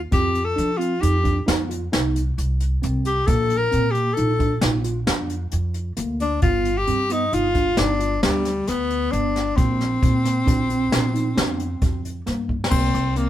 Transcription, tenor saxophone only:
0, 0, Header, 1, 2, 480
1, 0, Start_track
1, 0, Tempo, 449775
1, 127, Time_signature, 7, 2, 24, 8
1, 14187, End_track
2, 0, Start_track
2, 0, Title_t, "Tenor saxophone"
2, 0, Program_c, 0, 66
2, 136, Note_on_c, 0, 67, 83
2, 477, Note_on_c, 0, 69, 93
2, 493, Note_off_c, 0, 67, 0
2, 824, Note_on_c, 0, 65, 80
2, 840, Note_off_c, 0, 69, 0
2, 1079, Note_on_c, 0, 67, 80
2, 1095, Note_off_c, 0, 65, 0
2, 1567, Note_off_c, 0, 67, 0
2, 3266, Note_on_c, 0, 67, 86
2, 3486, Note_on_c, 0, 69, 100
2, 3502, Note_off_c, 0, 67, 0
2, 3811, Note_on_c, 0, 70, 92
2, 3827, Note_off_c, 0, 69, 0
2, 4172, Note_on_c, 0, 67, 81
2, 4188, Note_off_c, 0, 70, 0
2, 4413, Note_on_c, 0, 69, 85
2, 4429, Note_off_c, 0, 67, 0
2, 4917, Note_off_c, 0, 69, 0
2, 6628, Note_on_c, 0, 62, 94
2, 6848, Note_off_c, 0, 62, 0
2, 6855, Note_on_c, 0, 65, 98
2, 7229, Note_on_c, 0, 67, 105
2, 7245, Note_off_c, 0, 65, 0
2, 7600, Note_on_c, 0, 63, 91
2, 7616, Note_off_c, 0, 67, 0
2, 7828, Note_on_c, 0, 65, 106
2, 7844, Note_off_c, 0, 63, 0
2, 8301, Note_on_c, 0, 62, 101
2, 8317, Note_off_c, 0, 65, 0
2, 8779, Note_off_c, 0, 62, 0
2, 8785, Note_on_c, 0, 55, 92
2, 9269, Note_on_c, 0, 59, 90
2, 9285, Note_off_c, 0, 55, 0
2, 9730, Note_on_c, 0, 62, 95
2, 9746, Note_off_c, 0, 59, 0
2, 10207, Note_on_c, 0, 60, 97
2, 10223, Note_off_c, 0, 62, 0
2, 13086, Note_off_c, 0, 60, 0
2, 13557, Note_on_c, 0, 60, 83
2, 14058, Note_on_c, 0, 58, 77
2, 14074, Note_off_c, 0, 60, 0
2, 14187, Note_off_c, 0, 58, 0
2, 14187, End_track
0, 0, End_of_file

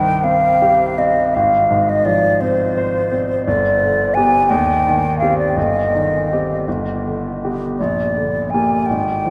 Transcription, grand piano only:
0, 0, Header, 1, 2, 480
1, 0, Start_track
1, 0, Key_signature, -3, "minor"
1, 0, Tempo, 728155
1, 880, Time_signature, 6, 3, 24, 8
1, 1353, Tempo, 697674
1, 3273, Tempo, 735294
1, 5193, Tempo, 715990
1, 6210, End_track
2, 0, Start_track
2, 0, Title_t, "Grand piano"
2, 0, Program_c, 0, 0
2, 0, Control_c, 0, 64, 127
2, 0, Note_on_c, 0, 36, 51
2, 0, Note_on_c, 0, 43, 40
2, 0, Note_on_c, 0, 51, 37
2, 157, Note_on_c, 0, 60, 39
2, 298, Note_off_c, 0, 51, 0
2, 409, Note_on_c, 0, 67, 43
2, 546, Note_off_c, 0, 60, 0
2, 646, Note_on_c, 0, 60, 41
2, 790, Note_off_c, 0, 67, 0
2, 858, Note_off_c, 0, 36, 0
2, 883, Note_off_c, 0, 60, 0
2, 890, Control_c, 0, 64, 0
2, 892, Note_off_c, 0, 43, 0
2, 897, Note_on_c, 0, 32, 47
2, 996, Control_c, 0, 64, 127
2, 1125, Note_on_c, 0, 44, 41
2, 1358, Note_on_c, 0, 53, 40
2, 1503, Note_off_c, 0, 44, 0
2, 1600, Note_on_c, 0, 60, 43
2, 1746, Note_off_c, 0, 53, 0
2, 1849, Note_on_c, 0, 72, 42
2, 1986, Note_off_c, 0, 60, 0
2, 2086, Note_on_c, 0, 60, 44
2, 2228, Note_off_c, 0, 72, 0
2, 2300, Note_off_c, 0, 32, 0
2, 2321, Note_off_c, 0, 60, 0
2, 2331, Control_c, 0, 64, 0
2, 2332, Note_on_c, 0, 31, 54
2, 2434, Control_c, 0, 64, 127
2, 2573, Note_on_c, 0, 50, 45
2, 2807, Note_on_c, 0, 59, 41
2, 2812, Note_on_c, 0, 67, 43
2, 2946, Note_off_c, 0, 50, 0
2, 3016, Note_off_c, 0, 59, 0
2, 3018, Note_off_c, 0, 31, 0
2, 3018, Note_off_c, 0, 67, 0
2, 3040, Note_on_c, 0, 39, 54
2, 3044, Control_c, 0, 64, 0
2, 3162, Control_c, 0, 64, 127
2, 3290, Note_on_c, 0, 51, 40
2, 3521, Note_on_c, 0, 67, 41
2, 3522, Note_on_c, 0, 60, 36
2, 3655, Note_off_c, 0, 51, 0
2, 3725, Note_off_c, 0, 39, 0
2, 3728, Note_off_c, 0, 60, 0
2, 3728, Note_off_c, 0, 67, 0
2, 3746, Note_on_c, 0, 31, 50
2, 3755, Control_c, 0, 64, 0
2, 3877, Control_c, 0, 64, 127
2, 3994, Note_on_c, 0, 51, 38
2, 4241, Note_on_c, 0, 60, 34
2, 4244, Note_on_c, 0, 67, 36
2, 4372, Note_off_c, 0, 51, 0
2, 4444, Note_off_c, 0, 31, 0
2, 4449, Note_off_c, 0, 60, 0
2, 4451, Note_off_c, 0, 67, 0
2, 4474, Note_on_c, 0, 31, 43
2, 4475, Control_c, 0, 64, 0
2, 4574, Control_c, 0, 64, 127
2, 4727, Note_on_c, 0, 50, 32
2, 4973, Note_on_c, 0, 59, 29
2, 4973, Note_on_c, 0, 67, 32
2, 5107, Note_off_c, 0, 50, 0
2, 5176, Note_off_c, 0, 31, 0
2, 5179, Note_off_c, 0, 59, 0
2, 5179, Note_off_c, 0, 67, 0
2, 5203, Control_c, 0, 64, 0
2, 5207, Note_on_c, 0, 34, 42
2, 5318, Control_c, 0, 64, 127
2, 5450, Note_on_c, 0, 50, 33
2, 5700, Note_on_c, 0, 58, 31
2, 5701, Note_on_c, 0, 67, 31
2, 5829, Note_off_c, 0, 50, 0
2, 5903, Note_off_c, 0, 34, 0
2, 5906, Note_off_c, 0, 58, 0
2, 5906, Note_off_c, 0, 67, 0
2, 5930, Control_c, 0, 64, 0
2, 5940, Note_on_c, 0, 32, 41
2, 6044, Control_c, 0, 64, 127
2, 6178, Note_on_c, 0, 53, 33
2, 6210, Note_off_c, 0, 32, 0
2, 6210, Note_off_c, 0, 53, 0
2, 6210, End_track
0, 0, End_of_file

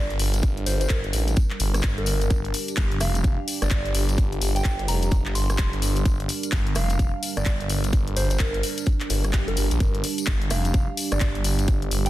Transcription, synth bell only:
0, 0, Header, 1, 2, 480
1, 0, Start_track
1, 0, Key_signature, -2, "minor"
1, 0, Tempo, 468750
1, 439, Time_signature, 4, 2, 24, 8
1, 12389, End_track
2, 0, Start_track
2, 0, Title_t, "Synth bell"
2, 0, Program_c, 0, 98
2, 680, Note_on_c, 0, 72, 91
2, 774, Note_off_c, 0, 72, 0
2, 827, Note_on_c, 0, 72, 82
2, 886, Note_off_c, 0, 72, 0
2, 920, Note_on_c, 0, 70, 91
2, 1070, Note_off_c, 0, 70, 0
2, 2027, Note_on_c, 0, 70, 94
2, 2688, Note_off_c, 0, 70, 0
2, 3080, Note_on_c, 0, 77, 96
2, 3560, Note_off_c, 0, 77, 0
2, 3708, Note_on_c, 0, 74, 87
2, 3767, Note_off_c, 0, 74, 0
2, 4666, Note_on_c, 0, 79, 96
2, 4726, Note_off_c, 0, 79, 0
2, 5001, Note_on_c, 0, 82, 95
2, 5151, Note_off_c, 0, 82, 0
2, 5478, Note_on_c, 0, 84, 94
2, 6162, Note_off_c, 0, 84, 0
2, 6920, Note_on_c, 0, 77, 97
2, 7400, Note_off_c, 0, 77, 0
2, 7547, Note_on_c, 0, 74, 89
2, 7606, Note_off_c, 0, 74, 0
2, 8360, Note_on_c, 0, 72, 90
2, 8454, Note_off_c, 0, 72, 0
2, 8507, Note_on_c, 0, 72, 81
2, 8566, Note_off_c, 0, 72, 0
2, 8599, Note_on_c, 0, 70, 97
2, 8750, Note_off_c, 0, 70, 0
2, 9705, Note_on_c, 0, 70, 93
2, 10367, Note_off_c, 0, 70, 0
2, 10760, Note_on_c, 0, 77, 94
2, 11240, Note_off_c, 0, 77, 0
2, 11387, Note_on_c, 0, 74, 93
2, 11447, Note_off_c, 0, 74, 0
2, 11479, Note_on_c, 0, 74, 75
2, 11573, Note_off_c, 0, 74, 0
2, 12348, Note_on_c, 0, 79, 98
2, 12389, Note_off_c, 0, 79, 0
2, 12389, End_track
0, 0, End_of_file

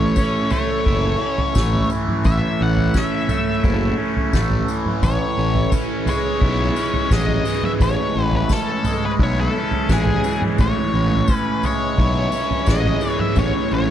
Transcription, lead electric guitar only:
0, 0, Header, 1, 2, 480
1, 0, Start_track
1, 0, Tempo, 694444
1, 1558, Time_signature, 4, 2, 24, 8
1, 9610, End_track
2, 0, Start_track
2, 0, Title_t, "Lead electric guitar"
2, 0, Program_c, 0, 29
2, 0, Note_on_c, 0, 73, 83
2, 351, Note_off_c, 0, 73, 0
2, 359, Note_on_c, 0, 73, 74
2, 1291, Note_off_c, 0, 73, 0
2, 1562, Note_on_c, 0, 76, 88
2, 1807, Note_off_c, 0, 76, 0
2, 1812, Note_on_c, 0, 78, 82
2, 2052, Note_off_c, 0, 78, 0
2, 2056, Note_on_c, 0, 76, 74
2, 2499, Note_off_c, 0, 76, 0
2, 3481, Note_on_c, 0, 73, 101
2, 3932, Note_off_c, 0, 73, 0
2, 4211, Note_on_c, 0, 73, 84
2, 4926, Note_off_c, 0, 73, 0
2, 4929, Note_on_c, 0, 75, 87
2, 5285, Note_off_c, 0, 75, 0
2, 5288, Note_on_c, 0, 76, 78
2, 5323, Note_off_c, 0, 76, 0
2, 5406, Note_on_c, 0, 73, 93
2, 5697, Note_off_c, 0, 73, 0
2, 5697, Note_on_c, 0, 71, 93
2, 5773, Note_off_c, 0, 71, 0
2, 5776, Note_on_c, 0, 71, 74
2, 5893, Note_off_c, 0, 71, 0
2, 5893, Note_on_c, 0, 69, 79
2, 6246, Note_off_c, 0, 69, 0
2, 6256, Note_on_c, 0, 71, 78
2, 6291, Note_off_c, 0, 71, 0
2, 6380, Note_on_c, 0, 73, 80
2, 6493, Note_off_c, 0, 73, 0
2, 6498, Note_on_c, 0, 69, 89
2, 6859, Note_off_c, 0, 69, 0
2, 6863, Note_on_c, 0, 68, 74
2, 7187, Note_off_c, 0, 68, 0
2, 7334, Note_on_c, 0, 73, 94
2, 7846, Note_off_c, 0, 73, 0
2, 7846, Note_on_c, 0, 71, 94
2, 8052, Note_off_c, 0, 71, 0
2, 8060, Note_on_c, 0, 73, 80
2, 8766, Note_off_c, 0, 73, 0
2, 8769, Note_on_c, 0, 75, 76
2, 9124, Note_off_c, 0, 75, 0
2, 9126, Note_on_c, 0, 76, 79
2, 9235, Note_off_c, 0, 76, 0
2, 9256, Note_on_c, 0, 73, 90
2, 9473, Note_off_c, 0, 73, 0
2, 9497, Note_on_c, 0, 73, 79
2, 9610, Note_off_c, 0, 73, 0
2, 9610, End_track
0, 0, End_of_file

